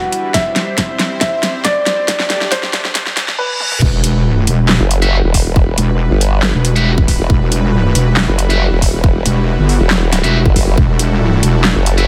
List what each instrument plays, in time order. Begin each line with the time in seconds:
Already playing: supersaw synth G3 D4 E4 B4, grand piano F#4
0.12 closed hi-hat
0.34 supersaw synth C4 C5, grand piano E5, kick, snare, closed hi-hat
0.56 snare, closed hi-hat
0.78 kick, snare, closed hi-hat
0.99 snare, closed hi-hat
1.21 grand piano E5, kick, snare, closed hi-hat
1.43 snare, closed hi-hat
1.65 grand piano D5, kick, snare, closed hi-hat
1.86 snare, closed hi-hat
2.08 supersaw synth A3 D4 G4 D5, kick, snare, closed hi-hat
2.20 snare
2.30 snare, closed hi-hat
2.41 snare
2.52 grand piano C5, kick, snare, closed hi-hat
2.63 snare
2.73 snare, closed hi-hat
2.85 snare
2.95 kick, snare, closed hi-hat, reverse cymbal
3.07 snare
3.17 snare, closed hi-hat
3.28 snare
3.39 grand piano B4
3.60 high tom
3.72 mid tom
3.82 wobble bass E1, supersaw synth G3 E4 F#4 B4, kick, crash, impact
4.04 closed hi-hat
4.47 wobble bass E1, closed hi-hat
4.69 snare, clap
4.80 wobble bass F#1
4.91 closed hi-hat
5.02 distorted electric guitar F#4 G4 E5, closed hi-hat
5.24 wobble bass E1
5.34 kick, open hi-hat
5.46 wobble bass E1
5.56 kick
5.78 wobble bass E1, closed hi-hat
6.11 wobble bass G1
6.21 closed hi-hat
6.43 snare, clap
6.54 wobble bass E1
6.65 closed hi-hat
6.76 distorted electric guitar F#4 G4 E5, closed hi-hat
6.98 kick
7.08 kick, open hi-hat
7.20 wobble bass E1
7.30 wobble bass E1, kick
7.52 closed hi-hat
7.95 wobble bass E1, closed hi-hat
8.17 snare, clap
8.28 wobble bass F#1
8.39 closed hi-hat
8.50 distorted electric guitar F#4 G4 E5, closed hi-hat
8.72 wobble bass E1
8.82 kick, open hi-hat
8.94 wobble bass E1
9.04 kick
9.26 wobble bass E1, closed hi-hat
9.59 wobble bass G1
9.69 open hi-hat
9.80 wobble bass E1
9.91 snare, clap
10.13 snare, closed hi-hat
10.24 wobble bass E1, distorted electric guitar F#4 G4 E5, closed hi-hat
10.46 wobble bass F#1, kick
10.56 kick, open hi-hat
10.78 wobble bass E1, supersaw synth A4, kick
10.99 closed hi-hat
11.43 wobble bass E1, closed hi-hat
11.65 snare, clap
11.76 wobble bass F#1
11.86 closed hi-hat
11.98 distorted electric guitar F#4 G4 E5, closed hi-hat